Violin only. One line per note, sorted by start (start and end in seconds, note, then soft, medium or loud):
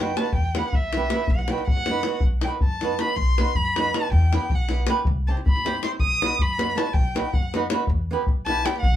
0.00 0.19 G5 medium
0.17 0.35 A5 medium
0.36 0.58 G5 medium
0.57 0.76 F#5 medium
0.75 1.32 E5 medium
1.30 1.51 F#5 medium
1.50 1.67 G5 medium
1.68 2.19 F#5 medium
2.43 2.52 G5 medium
2.64 3.02 A5 medium
3.01 3.18 B5 medium
3.16 3.57 C6 medium
3.56 3.97 B5 loud
3.96 4.12 A5 loud
4.13 4.57 G5 medium
4.55 4.73 F#5 medium
5.28 5.36 A5 medium
5.48 5.82 B5 medium
5.83 5.91 C6 medium
6.01 6.44 D#6 medium
6.42 6.79 B5 medium
6.77 6.95 A5 medium
6.94 7.36 G5 medium
7.35 7.55 F#5 medium
8.46 8.67 A5 loud
8.65 8.80 G5 medium
8.81 8.96 F#5 medium